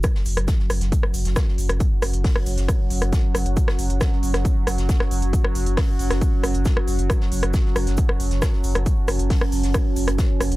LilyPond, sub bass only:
\new Staff \with { instrumentName = "Sub bass" } { \clef bass \time 4/4 \key fis \minor \tempo 4 = 136 r8 fis,,16 fis,,16 r8 fis,,16 fis,,16 r8 fis,,16 fis,,16 r8 fis,,16 fis,,16 | r8 fis,,16 fis,,16 r8 fis,,16 fis,,16 r8 fis,,16 fis,,16 r8 fis,,16 fis,,16 | r8 fis,,16 fis,,16 r8 fis,,16 fis,,16 r8 fis,,16 fis,,16 r8 fis,,16 fis,,16 | r8 fis,,16 fis,,16 r8 fis,,16 fis,,16 r8 fis,,16 fis,,16 r8 fis,,16 fis,,16 |
r8 fis,,16 fis,,16 r8 fis,,16 fis,,16 r8 fis,,16 fis,,16 r8 fis,,16 fis,,16 | r8 fis,,16 fis,,16 r8 fis,,16 fis,,16 r8 fis,,16 fis,,16 r8 fis,,16 fis,,16 | }